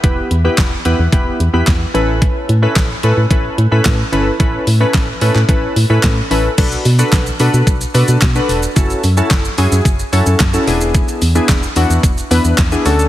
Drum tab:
CC |----------------|----------------|----------------|x---------------|
HH |x-x-x-x-x-x-x-x-|x-x-x-x-x-x-x-x-|x-o-x-o-x-o-x-o-|x-o-x-o-x-o-x-o-|
SH |----------------|----------------|----------------|xxxxxxxxxxxxxxxx|
CP |----x-------x---|----x-------x---|----x--x----x---|----x-------x---|
SD |----o-------o---|----o-------o---|----o-------o---|----o-------o---|
BD |o---o---o---o---|o---o---o---o---|o---o---o---o---|o---o---o---o---|

CC |----------------|----------------|
HH |x-o-x-o-x-o-x-o-|x-o-x-o-x-o-x-o-|
SH |xxxxxxxxxxxxxxxx|xxxxxxxxxxxxxxxx|
CP |----x-------x---|----x-------x---|
SD |----o-------o---|----o-------o---|
BD |o---o---o---o---|o---o---o---o---|